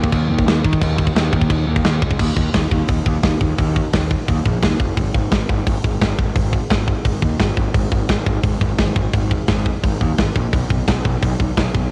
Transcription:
0.04 kick
0.12 picked electric bass D#2, kick, crash
0.30 picked electric bass D#2
0.38 kick
0.46 picked electric bass D#2, snare, crash
0.65 picked electric bass D#3, kick
0.73 kick
0.82 picked electric bass D#2, kick, crash
0.99 kick
1.07 kick
1.15 picked electric bass D#2, snare, crash
1.33 picked electric bass D#2, kick
1.42 kick
1.50 picked electric bass D#2, kick, crash
1.67 picked electric bass D#2
1.76 kick
1.84 picked electric bass D#2, snare, crash
2.02 picked electric bass C#2, kick
2.11 kick
2.19 picked electric bass D#2, kick, crash
2.36 picked electric bass D#2, kick
2.54 picked electric bass D#2, kick, snare, open hi-hat
2.71 picked electric bass D#2, kick
2.88 picked electric bass D#2, kick, open hi-hat
3.06 picked electric bass D#2, kick
3.23 picked electric bass D#2, kick, snare, open hi-hat
3.41 picked electric bass D#2, kick
3.58 picked electric bass D#2, kick, open hi-hat
3.76 kick
3.93 picked electric bass D#2, kick, snare, open hi-hat
4.11 kick
4.28 picked electric bass D#2, kick, open hi-hat
4.45 picked electric bass A#1, kick
4.63 picked electric bass D#2, kick, snare, open hi-hat
4.80 picked electric bass F#1, kick
4.97 picked electric bass G#1, kick, open hi-hat
5.14 picked electric bass G#1, kick
5.32 picked electric bass G#1, kick, snare, open hi-hat
5.49 picked electric bass G#1, kick
5.67 picked electric bass G#1, kick, open hi-hat
5.84 picked electric bass G#1, kick
6.01 picked electric bass G#1, kick, snare, open hi-hat
6.19 picked electric bass G#1, kick
6.36 picked electric bass G#1, kick, open hi-hat
6.53 kick
6.70 picked electric bass G#1, kick, snare, open hi-hat
6.88 kick
7.05 picked electric bass G#1, kick, open hi-hat
7.22 picked electric bass D#2, kick
7.39 picked electric bass G#1, kick, snare, open hi-hat
7.57 picked electric bass G#1, kick
7.74 picked electric bass G#1, kick, open hi-hat
7.92 picked electric bass G#1, kick
8.09 picked electric bass G#1, kick, snare
8.26 picked electric bass G#1, kick
8.43 picked electric bass G#1, kick, open hi-hat
8.61 picked electric bass G#1, kick
8.78 picked electric bass G#1, kick, snare, open hi-hat
8.96 picked electric bass G#1, kick
9.13 picked electric bass G#1, kick, open hi-hat
9.31 kick
9.48 picked electric bass G#1, kick, snare, open hi-hat
9.66 kick
9.84 picked electric bass G#1, kick, open hi-hat
10.01 picked electric bass D#2, kick
10.18 picked electric bass G#1, kick, snare, open hi-hat
10.36 picked electric bass A#1, kick
10.53 picked electric bass B1, kick, open hi-hat
10.70 picked electric bass B1, kick
10.88 picked electric bass B1, kick, snare, open hi-hat
11.05 picked electric bass B1, kick
11.22 picked electric bass B1, kick, open hi-hat
11.40 picked electric bass B1, kick
11.57 picked electric bass B1, kick, snare, open hi-hat
11.75 picked electric bass B1, kick

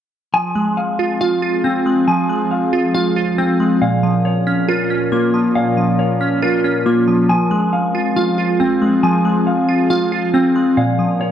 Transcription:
0.34 synth keys F3, ambient pad F3 C4 G#4, clean electric guitar G#5
0.55 synth keys G#3
0.77 clean electric guitar F5
0.99 synth keys F4
1.21 clean electric guitar F4, synth keys F5
1.42 synth keys F4
1.64 synth keys C4, clean electric guitar C4
1.86 synth keys G#3
2.08 synth keys F3, clean electric guitar G#5
2.29 synth keys G#3
2.51 clean electric guitar F5
2.73 synth keys F4
2.94 clean electric guitar F4, synth keys F5
3.16 synth keys F4
3.38 clean electric guitar C4, synth keys C4
3.60 synth keys G#3
3.82 synth keys A#2, ambient pad F3 C#4 A#4, clean electric guitar F5
4.03 synth keys F3
4.25 clean electric guitar C#5
4.47 synth keys C#4
4.68 synth keys F4, clean electric guitar A#4
4.90 synth keys C#4
5.12 synth keys A#3, clean electric guitar F4
5.34 synth keys F3
5.55 synth keys A#2, clean electric guitar F5
5.77 synth keys F3
5.99 clean electric guitar C#5
6.21 synth keys C#4
6.42 synth keys F4, clean electric guitar A#4
6.64 synth keys C#4
6.86 synth keys A#3, clean electric guitar F4
7.08 synth keys F3
7.29 synth keys F3, ambient pad C4 G#4, clean electric guitar G#5
7.51 synth keys G#3
7.73 clean electric guitar F5
7.95 synth keys F4
8.16 clean electric guitar F4, synth keys F5
8.38 synth keys F4
8.60 synth keys C4, clean electric guitar C4
8.82 synth keys G#3
9.03 synth keys F3, clean electric guitar G#5
9.25 synth keys G#3
9.47 clean electric guitar F5
9.69 synth keys F4
9.90 clean electric guitar F4, synth keys F5
10.12 synth keys F4
10.34 clean electric guitar C4, synth keys C4
10.56 synth keys G#3
10.77 synth keys A#2, ambient pad C#4 A#4, clean electric guitar F5
10.99 synth keys F3
11.21 clean electric guitar C#5

